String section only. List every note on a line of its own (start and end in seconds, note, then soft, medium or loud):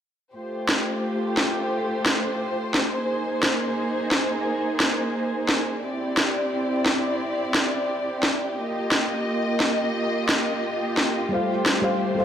0.34 2.89 A3 medium
0.34 2.89 F4 medium
0.34 2.89 G4 medium
0.34 5.79 C5 medium
2.91 5.80 A#3 medium
2.91 5.80 D#4 medium
2.91 5.80 G#4 medium
5.83 8.54 C4 medium
5.83 8.55 E4 medium
5.83 12.25 G4 medium
5.83 8.54 D5 medium
8.57 11.29 A#3 medium
8.57 12.25 F4 medium
8.57 11.29 D#5 medium
11.31 12.25 A3 medium
11.31 12.25 C5 medium